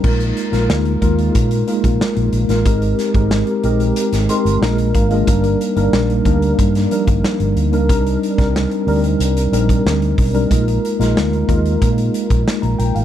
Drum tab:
CC |x---------------|----------------|----------------|----------------|
HH |-xxx-xxxxxxx-xxx|xxxx-xxxxxxx-xxx|xxxx-xxxxxxx-xxx|xxxx-xoxxxxx-xox|
SD |---oo-------o--o|--o-o----o--o---|----o----o--o---|---oo-------o---|
BD |o-----o-o--o----|o--o----------o-|o-----o-o--o----|o--o-------o--o-|

CC |----------------|
HH |xxxx-xxxxxxx-xxx|
SD |---oo-------o---|
BD |o-----o-o--o----|